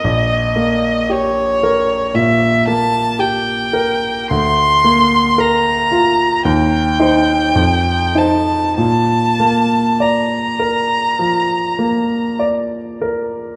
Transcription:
X:1
M:4/4
L:1/8
Q:1/4=54
K:Bb
V:1 name="Violin"
e2 _d2 _f a g2 | c'2 b2 g3 a | a2 b4 z2 |]
V:2 name="Grand piano"
B,,, B, G B B,, B, G B | D,, B, B F E,, [Ec] F,, [Ec] | B,, B, d B F, B, d B |]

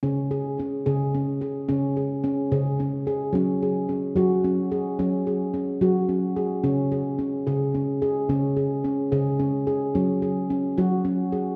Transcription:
X:1
M:6/8
L:1/8
Q:3/8=73
K:F#dor
V:1 name="Handpan"
C G C G C G | C G C G C G | C G C F C G | C G C F C G |
C G C G C G | C G C G C G | C G C F C G |]
V:2 name="Handpan" clef=bass
C,3 C,3 | C,3 C,3 | F,3 F,3 | F,3 F,3 |
C,3 C,3 | C,3 C,3 | F,3 F,3 |]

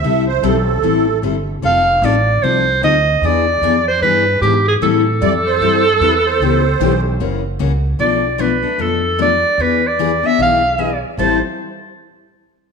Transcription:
X:1
M:4/4
L:1/8
Q:"Swing" 1/4=151
K:Am
V:1 name="Clarinet"
z8 | f2 d2 c2 _e2 | d3 c B2 G ^G | A8- |
A4 z4 | d2 B2 A2 d2 | B d2 e f3 z | a z6 z |]
V:2 name="Accordion"
e c A4 z2 | z8 | z8 | z2 d c2 A B c- |
c3 z4 z | z8 | z8 | c z6 z |]
V:3 name="Steel-string acoustic guitar"
[E,G,CEA] z [E,G,CEA] z [E,G,CEA] z [E,G,CEA] z | [F,C_EA] z [F,CEA] z [F,CEA] z [F,CEA] z | [E,B,D^G] z [E,B,DG] z [E,B,DG] z [E,B,DG] z | [E,G,CEA] z [E,G,CEA] z [E,G,CEA] z [E,G,CEA] z |
[^C,E,B,^CG] z [C,E,B,CG] z [C,E,^A,C^F] z [C,E,A,CF] z | [B,,F,A,DA] z [B,,F,A,DA] [A,DA] [B,,F,A,DA] z [B,,F,A,DA] z | [E,B,D^G] z [E,B,DG] [B,DG] [E,B,DG] z [E,B,DG] z | [A,,E,G,CEA] z6 z |]
V:4 name="Upright bass" clef=bass
C,,2 B,,,2 A,,,2 G,,,2 | F,,,2 A,,,2 C,,2 D,,2 | E,,2 F,,2 G,,2 ^G,,2 | A,,2 F,,2 G,,2 E,,2 |
^C,,2 B,,,2 ^F,,,2 C,,2 | B,,,4 F,,4 | E,,4 B,,,4 | A,,, z6 z |]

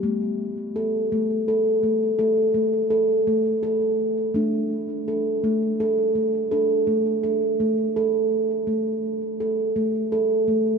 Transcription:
X:1
M:6/8
L:1/8
Q:3/8=56
K:Ddor
V:1 name="Steel tongue drum"
A,2 A A, A A, | A A, A A, A2 | A,2 A A, A A, | A A, A A, A2 |
z2 A A, A A, |]
V:2 name="Steel tongue drum"
z6 | A,6 | D6 | D6 |
A,6 |]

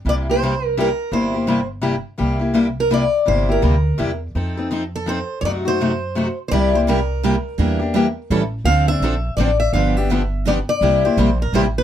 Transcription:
X:1
M:3/4
L:1/16
Q:"Swing" 1/4=167
K:Cmix
V:1 name="Steel-string acoustic guitar"
d2 c6 B4 | c6 z6 | z6 B2 d4 | c2 B8 z2 |
z6 A2 c3- c/2 _d/2 | d2 c8 z3/2 c/2 | d2 c2 B8- | B8 z4 |
f2 e6 d2 e2 | f2 e6 d2 d2- | d2 c4 B2 c2 =B2 |]
V:2 name="Steel-string acoustic guitar"
[C,G,B,EG]2 [B,EG]2 [C,G,B,EG] z3 [C,G,B,EG] z3 | [C,G,B,EG]2 [B,EG]2 [C,G,B,EG] z3 [C,G,B,EG] z3 | [C,G,B,EG]2 [B,EG]2 [C,G,B,EG] z3 [C,G,B,EG] z3 | [C,G,B,EG]2 [B,EG]2 [C,G,B,EG] z3 [C,G,B,EG] z3 |
[F,C_EA]2 [CEA]2 [F,CEA] z3 [F,CEA] z3 | [C,^F,A,^D^F]2 [A,DF]2 [C,F,A,DF] z3 [C,F,A,DF] z3 | [C,G,B,EG]2 [B,EG]2 [C,G,B,EG] z3 [C,G,B,EG] z3 | [E,B,DG]2 [B,DG]2 [E,B,DG] z3 [E,G,^CEA] z3 |
[D,F,CDA]2 [CDA]2 [D,F,CDA] z3 [D,F,CDA] z3 | [D,F,=B,DG]2 [B,DG]2 [D,F,B,DG] z3 [D,F,B,DG] z3 | [C,G,B,EG]2 [B,EG]2 [C,G,B,EG] z3 [C,G,B,EG] z3 |]
V:3 name="Steel-string acoustic guitar"
z12 | z12 | z12 | z12 |
z12 | z12 | [C,G,B,EG]2 z2 [C,G,B,EG] z3 [C,G,B,EG] z3 | [E,G,DEB]2 z2 [E,G,DEB] z3 [E,G,^CEA] z3 |
[D,F,CDA]2 z2 [D,F,CDA] z3 [D,F,CDA] z3 | [D,F,=B,DG]2 z2 [D,F,B,DG] z3 [D,F,B,DG] z3 | [C,G,B,EG]2 z2 [C,G,B,EG] z3 [C,G,B,EG] z3 |]
V:4 name="Upright bass" clef=bass
C,,12 | G,,,12 | C,,12 | G,,,4 D,,4 E,,4 |
F,,12 | ^F,,12 | C,,12 | E,,8 A,,,4 |
D,,4 B,,,4 A,,,4 | G,,,12 | C,,4 B,,,4 A,,,4 |]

